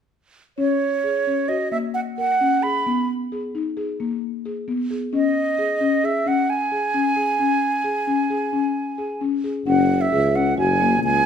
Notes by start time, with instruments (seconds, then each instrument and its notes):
0.58 marimba C#4, flute C#5
1.04 marimba G#4
1.27 marimba C#4
1.48 marimba F#4, flute D#5
1.71 marimba A#3, flute E5
1.94 flute F#5
2.17 marimba A#4, flute F#5
2.41 marimba C#4
2.63 marimba G#4, flute B5
2.87 marimba B3
3.32 marimba G#4
3.55 marimba D#4
3.77 marimba G#4
4.00 marimba A#3
4.46 marimba G#4
4.68 marimba B3
4.91 marimba G#4
5.13 marimba C#4, flute D#5
5.59 marimba G#4
5.81 marimba C#4
6.04 marimba G#4, flute E5
6.26 marimba C#4, flute F#5
6.50 flute G#5
6.72 marimba G#4
6.94 marimba C#4
7.16 marimba G#4
7.39 marimba C#4
7.84 marimba G#4
8.07 marimba C#4
8.30 marimba G#4
8.53 marimba C#4
8.98 marimba G#4
9.21 marimba C#4
9.44 marimba G#4
9.66 tuba F#1, marimba C#4, flute F#5
10.01 flute E5
10.12 tuba C#2, marimba G#4
10.35 marimba C#4, flute F#5
10.57 tuba F#1, marimba F#4, flute G#5
10.80 marimba A#3
11.03 tuba C#2, flute G#5